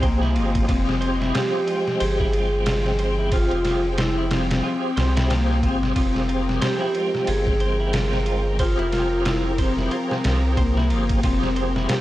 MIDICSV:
0, 0, Header, 1, 7, 480
1, 0, Start_track
1, 0, Key_signature, -4, "minor"
1, 0, Tempo, 659341
1, 498, Time_signature, 4, 2, 24, 8
1, 8742, End_track
2, 0, Start_track
2, 0, Title_t, "Clean electric guitar"
2, 0, Program_c, 0, 27
2, 17, Note_on_c, 0, 72, 78
2, 145, Note_off_c, 0, 72, 0
2, 156, Note_on_c, 0, 64, 78
2, 246, Note_off_c, 0, 64, 0
2, 253, Note_on_c, 0, 65, 82
2, 485, Note_off_c, 0, 65, 0
2, 497, Note_on_c, 0, 65, 83
2, 632, Note_off_c, 0, 65, 0
2, 733, Note_on_c, 0, 72, 81
2, 863, Note_off_c, 0, 72, 0
2, 878, Note_on_c, 0, 64, 79
2, 967, Note_off_c, 0, 64, 0
2, 976, Note_on_c, 0, 65, 84
2, 1207, Note_off_c, 0, 65, 0
2, 1217, Note_on_c, 0, 65, 77
2, 1352, Note_off_c, 0, 65, 0
2, 1458, Note_on_c, 0, 72, 88
2, 1586, Note_off_c, 0, 72, 0
2, 1601, Note_on_c, 0, 64, 80
2, 1688, Note_off_c, 0, 64, 0
2, 1696, Note_on_c, 0, 65, 69
2, 1927, Note_off_c, 0, 65, 0
2, 1938, Note_on_c, 0, 65, 80
2, 2073, Note_off_c, 0, 65, 0
2, 2180, Note_on_c, 0, 72, 76
2, 2307, Note_off_c, 0, 72, 0
2, 2320, Note_on_c, 0, 64, 73
2, 2408, Note_off_c, 0, 64, 0
2, 2420, Note_on_c, 0, 65, 75
2, 2649, Note_off_c, 0, 65, 0
2, 2660, Note_on_c, 0, 65, 81
2, 2794, Note_off_c, 0, 65, 0
2, 2899, Note_on_c, 0, 72, 85
2, 3026, Note_off_c, 0, 72, 0
2, 3040, Note_on_c, 0, 64, 75
2, 3128, Note_off_c, 0, 64, 0
2, 3138, Note_on_c, 0, 65, 73
2, 3366, Note_off_c, 0, 65, 0
2, 3374, Note_on_c, 0, 65, 83
2, 3511, Note_off_c, 0, 65, 0
2, 3614, Note_on_c, 0, 72, 73
2, 3744, Note_off_c, 0, 72, 0
2, 3757, Note_on_c, 0, 64, 74
2, 3847, Note_off_c, 0, 64, 0
2, 3858, Note_on_c, 0, 65, 83
2, 4088, Note_off_c, 0, 65, 0
2, 4098, Note_on_c, 0, 65, 82
2, 4233, Note_off_c, 0, 65, 0
2, 4337, Note_on_c, 0, 65, 80
2, 4567, Note_off_c, 0, 65, 0
2, 4575, Note_on_c, 0, 65, 83
2, 4711, Note_off_c, 0, 65, 0
2, 4815, Note_on_c, 0, 72, 79
2, 4944, Note_off_c, 0, 72, 0
2, 4955, Note_on_c, 0, 64, 71
2, 5046, Note_off_c, 0, 64, 0
2, 5053, Note_on_c, 0, 65, 73
2, 5286, Note_off_c, 0, 65, 0
2, 5296, Note_on_c, 0, 65, 86
2, 5432, Note_off_c, 0, 65, 0
2, 5538, Note_on_c, 0, 72, 73
2, 5666, Note_off_c, 0, 72, 0
2, 5679, Note_on_c, 0, 64, 78
2, 5768, Note_off_c, 0, 64, 0
2, 5780, Note_on_c, 0, 65, 81
2, 6009, Note_off_c, 0, 65, 0
2, 6020, Note_on_c, 0, 65, 78
2, 6154, Note_off_c, 0, 65, 0
2, 6257, Note_on_c, 0, 72, 82
2, 6385, Note_off_c, 0, 72, 0
2, 6398, Note_on_c, 0, 64, 77
2, 6487, Note_off_c, 0, 64, 0
2, 6498, Note_on_c, 0, 65, 77
2, 6728, Note_off_c, 0, 65, 0
2, 6739, Note_on_c, 0, 65, 85
2, 6873, Note_off_c, 0, 65, 0
2, 6978, Note_on_c, 0, 72, 78
2, 7106, Note_off_c, 0, 72, 0
2, 7121, Note_on_c, 0, 64, 69
2, 7208, Note_off_c, 0, 64, 0
2, 7218, Note_on_c, 0, 65, 83
2, 7448, Note_off_c, 0, 65, 0
2, 7459, Note_on_c, 0, 65, 72
2, 7593, Note_off_c, 0, 65, 0
2, 7697, Note_on_c, 0, 72, 85
2, 7825, Note_off_c, 0, 72, 0
2, 7840, Note_on_c, 0, 64, 84
2, 7928, Note_off_c, 0, 64, 0
2, 7935, Note_on_c, 0, 65, 78
2, 8167, Note_off_c, 0, 65, 0
2, 8179, Note_on_c, 0, 65, 85
2, 8313, Note_off_c, 0, 65, 0
2, 8418, Note_on_c, 0, 72, 85
2, 8546, Note_off_c, 0, 72, 0
2, 8558, Note_on_c, 0, 64, 84
2, 8647, Note_off_c, 0, 64, 0
2, 8656, Note_on_c, 0, 65, 83
2, 8742, Note_off_c, 0, 65, 0
2, 8742, End_track
3, 0, Start_track
3, 0, Title_t, "Vibraphone"
3, 0, Program_c, 1, 11
3, 35, Note_on_c, 1, 58, 98
3, 514, Note_on_c, 1, 60, 95
3, 520, Note_off_c, 1, 58, 0
3, 957, Note_off_c, 1, 60, 0
3, 994, Note_on_c, 1, 67, 107
3, 1476, Note_on_c, 1, 68, 108
3, 1480, Note_off_c, 1, 67, 0
3, 1529, Note_off_c, 1, 68, 0
3, 1531, Note_on_c, 1, 67, 90
3, 1585, Note_off_c, 1, 67, 0
3, 1598, Note_on_c, 1, 68, 115
3, 2432, Note_on_c, 1, 65, 111
3, 2452, Note_off_c, 1, 68, 0
3, 2649, Note_off_c, 1, 65, 0
3, 2673, Note_on_c, 1, 65, 100
3, 2778, Note_off_c, 1, 65, 0
3, 2915, Note_on_c, 1, 64, 100
3, 3153, Note_off_c, 1, 64, 0
3, 3156, Note_on_c, 1, 60, 92
3, 3838, Note_off_c, 1, 60, 0
3, 3872, Note_on_c, 1, 58, 90
3, 4112, Note_off_c, 1, 58, 0
3, 4116, Note_on_c, 1, 60, 102
3, 4832, Note_on_c, 1, 67, 104
3, 4848, Note_off_c, 1, 60, 0
3, 5306, Note_on_c, 1, 68, 108
3, 5319, Note_off_c, 1, 67, 0
3, 6267, Note_on_c, 1, 65, 104
3, 6291, Note_off_c, 1, 68, 0
3, 6499, Note_off_c, 1, 65, 0
3, 6508, Note_on_c, 1, 65, 102
3, 6746, Note_on_c, 1, 64, 101
3, 6750, Note_off_c, 1, 65, 0
3, 6965, Note_off_c, 1, 64, 0
3, 6990, Note_on_c, 1, 60, 94
3, 7705, Note_on_c, 1, 58, 88
3, 7725, Note_off_c, 1, 60, 0
3, 8187, Note_on_c, 1, 60, 98
3, 8196, Note_off_c, 1, 58, 0
3, 8633, Note_off_c, 1, 60, 0
3, 8666, Note_on_c, 1, 67, 102
3, 8742, Note_off_c, 1, 67, 0
3, 8742, End_track
4, 0, Start_track
4, 0, Title_t, "String section"
4, 0, Program_c, 2, 48
4, 0, Note_on_c, 2, 53, 79
4, 0, Note_on_c, 2, 56, 83
4, 0, Note_on_c, 2, 60, 66
4, 0, Note_on_c, 2, 79, 72
4, 4331, Note_on_c, 2, 70, 91
4, 4334, Note_off_c, 2, 56, 0
4, 8742, Note_off_c, 2, 53, 0
4, 8742, Note_off_c, 2, 60, 0
4, 8742, Note_off_c, 2, 70, 0
4, 8742, Note_off_c, 2, 79, 0
4, 8742, End_track
5, 0, Start_track
5, 0, Title_t, "Tonewheel organ"
5, 0, Program_c, 3, 16
5, 0, Note_on_c, 3, 53, 86
5, 0, Note_on_c, 3, 60, 80
5, 0, Note_on_c, 3, 67, 76
5, 0, Note_on_c, 3, 68, 89
5, 475, Note_off_c, 3, 53, 0
5, 477, Note_off_c, 3, 60, 0
5, 481, Note_off_c, 3, 67, 0
5, 483, Note_off_c, 3, 68, 0
5, 497, Note_on_c, 3, 53, 94
5, 504, Note_on_c, 3, 60, 87
5, 508, Note_on_c, 3, 67, 82
5, 514, Note_on_c, 3, 68, 106
5, 1194, Note_off_c, 3, 53, 0
5, 1197, Note_off_c, 3, 60, 0
5, 1199, Note_off_c, 3, 67, 0
5, 1202, Note_off_c, 3, 68, 0
5, 1220, Note_on_c, 3, 53, 87
5, 1224, Note_on_c, 3, 60, 73
5, 1231, Note_on_c, 3, 79, 80
5, 1237, Note_on_c, 3, 56, 95
5, 2395, Note_off_c, 3, 53, 0
5, 2397, Note_off_c, 3, 60, 0
5, 2401, Note_off_c, 3, 79, 0
5, 2404, Note_off_c, 3, 56, 0
5, 2420, Note_on_c, 3, 53, 96
5, 2425, Note_on_c, 3, 60, 89
5, 2430, Note_on_c, 3, 67, 82
5, 2437, Note_on_c, 3, 68, 96
5, 3115, Note_off_c, 3, 53, 0
5, 3118, Note_off_c, 3, 60, 0
5, 3120, Note_off_c, 3, 67, 0
5, 3124, Note_off_c, 3, 68, 0
5, 3136, Note_on_c, 3, 53, 77
5, 3143, Note_on_c, 3, 60, 74
5, 3148, Note_on_c, 3, 67, 77
5, 3153, Note_on_c, 3, 68, 95
5, 4077, Note_off_c, 3, 53, 0
5, 4081, Note_off_c, 3, 60, 0
5, 4083, Note_off_c, 3, 67, 0
5, 4086, Note_off_c, 3, 68, 0
5, 4100, Note_on_c, 3, 53, 96
5, 4103, Note_on_c, 3, 60, 92
5, 4105, Note_on_c, 3, 67, 93
5, 4107, Note_on_c, 3, 68, 110
5, 4315, Note_off_c, 3, 53, 0
5, 4317, Note_off_c, 3, 60, 0
5, 4318, Note_off_c, 3, 67, 0
5, 4319, Note_off_c, 3, 68, 0
5, 4338, Note_on_c, 3, 53, 96
5, 4344, Note_on_c, 3, 60, 87
5, 4348, Note_on_c, 3, 67, 81
5, 4353, Note_on_c, 3, 68, 98
5, 5034, Note_off_c, 3, 53, 0
5, 5037, Note_off_c, 3, 60, 0
5, 5040, Note_off_c, 3, 67, 0
5, 5042, Note_off_c, 3, 68, 0
5, 5057, Note_on_c, 3, 53, 85
5, 5065, Note_on_c, 3, 60, 72
5, 5068, Note_on_c, 3, 79, 79
5, 5076, Note_on_c, 3, 56, 95
5, 6234, Note_off_c, 3, 53, 0
5, 6238, Note_off_c, 3, 60, 0
5, 6239, Note_off_c, 3, 79, 0
5, 6243, Note_off_c, 3, 56, 0
5, 6259, Note_on_c, 3, 53, 88
5, 6264, Note_on_c, 3, 60, 84
5, 6270, Note_on_c, 3, 67, 86
5, 6275, Note_on_c, 3, 68, 104
5, 6955, Note_off_c, 3, 53, 0
5, 6957, Note_off_c, 3, 60, 0
5, 6961, Note_off_c, 3, 67, 0
5, 6963, Note_off_c, 3, 68, 0
5, 6975, Note_on_c, 3, 53, 84
5, 6981, Note_on_c, 3, 60, 76
5, 6986, Note_on_c, 3, 67, 77
5, 6992, Note_on_c, 3, 68, 93
5, 8153, Note_off_c, 3, 53, 0
5, 8156, Note_off_c, 3, 60, 0
5, 8158, Note_off_c, 3, 67, 0
5, 8161, Note_off_c, 3, 68, 0
5, 8178, Note_on_c, 3, 53, 89
5, 8183, Note_on_c, 3, 60, 85
5, 8191, Note_on_c, 3, 67, 85
5, 8195, Note_on_c, 3, 68, 109
5, 8742, Note_off_c, 3, 53, 0
5, 8742, Note_off_c, 3, 60, 0
5, 8742, Note_off_c, 3, 67, 0
5, 8742, Note_off_c, 3, 68, 0
5, 8742, End_track
6, 0, Start_track
6, 0, Title_t, "Analog synth bass"
6, 0, Program_c, 4, 38
6, 0, Note_on_c, 4, 36, 95
6, 264, Note_on_c, 4, 31, 104
6, 275, Note_off_c, 4, 36, 0
6, 478, Note_off_c, 4, 31, 0
6, 501, Note_on_c, 4, 29, 106
6, 960, Note_off_c, 4, 29, 0
6, 1464, Note_on_c, 4, 31, 101
6, 2535, Note_off_c, 4, 31, 0
6, 2564, Note_on_c, 4, 29, 84
6, 3361, Note_off_c, 4, 29, 0
6, 3620, Note_on_c, 4, 36, 87
6, 4102, Note_on_c, 4, 31, 107
6, 4113, Note_off_c, 4, 36, 0
6, 4316, Note_off_c, 4, 31, 0
6, 4340, Note_on_c, 4, 29, 107
6, 4800, Note_off_c, 4, 29, 0
6, 5300, Note_on_c, 4, 31, 95
6, 6374, Note_off_c, 4, 31, 0
6, 6401, Note_on_c, 4, 29, 84
6, 7200, Note_off_c, 4, 29, 0
6, 7463, Note_on_c, 4, 36, 93
6, 7943, Note_on_c, 4, 31, 105
6, 7954, Note_off_c, 4, 36, 0
6, 8157, Note_off_c, 4, 31, 0
6, 8180, Note_on_c, 4, 29, 108
6, 8640, Note_off_c, 4, 29, 0
6, 8742, End_track
7, 0, Start_track
7, 0, Title_t, "Drums"
7, 20, Note_on_c, 9, 36, 107
7, 20, Note_on_c, 9, 51, 81
7, 93, Note_off_c, 9, 36, 0
7, 93, Note_off_c, 9, 51, 0
7, 166, Note_on_c, 9, 38, 44
7, 239, Note_off_c, 9, 38, 0
7, 260, Note_on_c, 9, 51, 60
7, 333, Note_off_c, 9, 51, 0
7, 400, Note_on_c, 9, 51, 83
7, 401, Note_on_c, 9, 36, 104
7, 473, Note_off_c, 9, 51, 0
7, 474, Note_off_c, 9, 36, 0
7, 499, Note_on_c, 9, 36, 113
7, 500, Note_on_c, 9, 51, 85
7, 572, Note_off_c, 9, 36, 0
7, 573, Note_off_c, 9, 51, 0
7, 647, Note_on_c, 9, 38, 54
7, 720, Note_off_c, 9, 38, 0
7, 740, Note_on_c, 9, 51, 69
7, 813, Note_off_c, 9, 51, 0
7, 886, Note_on_c, 9, 38, 53
7, 958, Note_off_c, 9, 38, 0
7, 980, Note_on_c, 9, 51, 88
7, 985, Note_on_c, 9, 38, 124
7, 1053, Note_off_c, 9, 51, 0
7, 1058, Note_off_c, 9, 38, 0
7, 1220, Note_on_c, 9, 51, 74
7, 1292, Note_off_c, 9, 51, 0
7, 1365, Note_on_c, 9, 38, 45
7, 1438, Note_off_c, 9, 38, 0
7, 1459, Note_on_c, 9, 51, 95
7, 1532, Note_off_c, 9, 51, 0
7, 1601, Note_on_c, 9, 36, 97
7, 1673, Note_off_c, 9, 36, 0
7, 1698, Note_on_c, 9, 51, 68
7, 1771, Note_off_c, 9, 51, 0
7, 1936, Note_on_c, 9, 51, 91
7, 1941, Note_on_c, 9, 38, 117
7, 2009, Note_off_c, 9, 51, 0
7, 2014, Note_off_c, 9, 38, 0
7, 2082, Note_on_c, 9, 38, 54
7, 2155, Note_off_c, 9, 38, 0
7, 2175, Note_on_c, 9, 51, 76
7, 2248, Note_off_c, 9, 51, 0
7, 2414, Note_on_c, 9, 51, 90
7, 2417, Note_on_c, 9, 36, 115
7, 2487, Note_off_c, 9, 51, 0
7, 2489, Note_off_c, 9, 36, 0
7, 2557, Note_on_c, 9, 51, 47
7, 2630, Note_off_c, 9, 51, 0
7, 2654, Note_on_c, 9, 51, 69
7, 2659, Note_on_c, 9, 38, 61
7, 2727, Note_off_c, 9, 51, 0
7, 2732, Note_off_c, 9, 38, 0
7, 2895, Note_on_c, 9, 51, 93
7, 2900, Note_on_c, 9, 38, 124
7, 2968, Note_off_c, 9, 51, 0
7, 2973, Note_off_c, 9, 38, 0
7, 3136, Note_on_c, 9, 51, 80
7, 3140, Note_on_c, 9, 38, 106
7, 3208, Note_off_c, 9, 51, 0
7, 3213, Note_off_c, 9, 38, 0
7, 3281, Note_on_c, 9, 51, 79
7, 3285, Note_on_c, 9, 38, 102
7, 3353, Note_off_c, 9, 51, 0
7, 3358, Note_off_c, 9, 38, 0
7, 3619, Note_on_c, 9, 51, 80
7, 3624, Note_on_c, 9, 38, 104
7, 3692, Note_off_c, 9, 51, 0
7, 3696, Note_off_c, 9, 38, 0
7, 3762, Note_on_c, 9, 51, 85
7, 3766, Note_on_c, 9, 38, 110
7, 3834, Note_off_c, 9, 51, 0
7, 3839, Note_off_c, 9, 38, 0
7, 3861, Note_on_c, 9, 51, 86
7, 3865, Note_on_c, 9, 38, 113
7, 3933, Note_off_c, 9, 51, 0
7, 3938, Note_off_c, 9, 38, 0
7, 4008, Note_on_c, 9, 38, 36
7, 4081, Note_off_c, 9, 38, 0
7, 4099, Note_on_c, 9, 36, 99
7, 4100, Note_on_c, 9, 51, 72
7, 4172, Note_off_c, 9, 36, 0
7, 4173, Note_off_c, 9, 51, 0
7, 4245, Note_on_c, 9, 38, 59
7, 4318, Note_off_c, 9, 38, 0
7, 4338, Note_on_c, 9, 36, 109
7, 4338, Note_on_c, 9, 51, 92
7, 4411, Note_off_c, 9, 36, 0
7, 4411, Note_off_c, 9, 51, 0
7, 4485, Note_on_c, 9, 38, 52
7, 4558, Note_off_c, 9, 38, 0
7, 4579, Note_on_c, 9, 51, 64
7, 4652, Note_off_c, 9, 51, 0
7, 4726, Note_on_c, 9, 38, 54
7, 4799, Note_off_c, 9, 38, 0
7, 4816, Note_on_c, 9, 51, 92
7, 4821, Note_on_c, 9, 38, 125
7, 4889, Note_off_c, 9, 51, 0
7, 4894, Note_off_c, 9, 38, 0
7, 5056, Note_on_c, 9, 51, 67
7, 5129, Note_off_c, 9, 51, 0
7, 5202, Note_on_c, 9, 38, 43
7, 5275, Note_off_c, 9, 38, 0
7, 5294, Note_on_c, 9, 51, 95
7, 5367, Note_off_c, 9, 51, 0
7, 5437, Note_on_c, 9, 36, 100
7, 5510, Note_off_c, 9, 36, 0
7, 5534, Note_on_c, 9, 51, 66
7, 5607, Note_off_c, 9, 51, 0
7, 5774, Note_on_c, 9, 51, 91
7, 5779, Note_on_c, 9, 38, 116
7, 5847, Note_off_c, 9, 51, 0
7, 5852, Note_off_c, 9, 38, 0
7, 5920, Note_on_c, 9, 38, 54
7, 5993, Note_off_c, 9, 38, 0
7, 6013, Note_on_c, 9, 51, 71
7, 6086, Note_off_c, 9, 51, 0
7, 6254, Note_on_c, 9, 51, 95
7, 6255, Note_on_c, 9, 36, 110
7, 6327, Note_off_c, 9, 51, 0
7, 6328, Note_off_c, 9, 36, 0
7, 6398, Note_on_c, 9, 51, 45
7, 6471, Note_off_c, 9, 51, 0
7, 6497, Note_on_c, 9, 51, 70
7, 6501, Note_on_c, 9, 38, 56
7, 6570, Note_off_c, 9, 51, 0
7, 6574, Note_off_c, 9, 38, 0
7, 6737, Note_on_c, 9, 51, 96
7, 6741, Note_on_c, 9, 38, 127
7, 6809, Note_off_c, 9, 51, 0
7, 6814, Note_off_c, 9, 38, 0
7, 6977, Note_on_c, 9, 36, 96
7, 6977, Note_on_c, 9, 51, 83
7, 7050, Note_off_c, 9, 36, 0
7, 7050, Note_off_c, 9, 51, 0
7, 7123, Note_on_c, 9, 38, 45
7, 7196, Note_off_c, 9, 38, 0
7, 7216, Note_on_c, 9, 51, 70
7, 7289, Note_off_c, 9, 51, 0
7, 7362, Note_on_c, 9, 38, 51
7, 7435, Note_off_c, 9, 38, 0
7, 7457, Note_on_c, 9, 51, 82
7, 7461, Note_on_c, 9, 38, 105
7, 7529, Note_off_c, 9, 51, 0
7, 7534, Note_off_c, 9, 38, 0
7, 7696, Note_on_c, 9, 51, 80
7, 7697, Note_on_c, 9, 36, 97
7, 7769, Note_off_c, 9, 51, 0
7, 7770, Note_off_c, 9, 36, 0
7, 7844, Note_on_c, 9, 38, 47
7, 7916, Note_off_c, 9, 38, 0
7, 7937, Note_on_c, 9, 51, 64
7, 8010, Note_off_c, 9, 51, 0
7, 8076, Note_on_c, 9, 51, 88
7, 8079, Note_on_c, 9, 36, 102
7, 8149, Note_off_c, 9, 51, 0
7, 8152, Note_off_c, 9, 36, 0
7, 8178, Note_on_c, 9, 36, 110
7, 8178, Note_on_c, 9, 51, 91
7, 8251, Note_off_c, 9, 36, 0
7, 8251, Note_off_c, 9, 51, 0
7, 8323, Note_on_c, 9, 38, 51
7, 8396, Note_off_c, 9, 38, 0
7, 8417, Note_on_c, 9, 51, 71
7, 8490, Note_off_c, 9, 51, 0
7, 8562, Note_on_c, 9, 38, 52
7, 8635, Note_off_c, 9, 38, 0
7, 8655, Note_on_c, 9, 51, 100
7, 8659, Note_on_c, 9, 38, 126
7, 8728, Note_off_c, 9, 51, 0
7, 8732, Note_off_c, 9, 38, 0
7, 8742, End_track
0, 0, End_of_file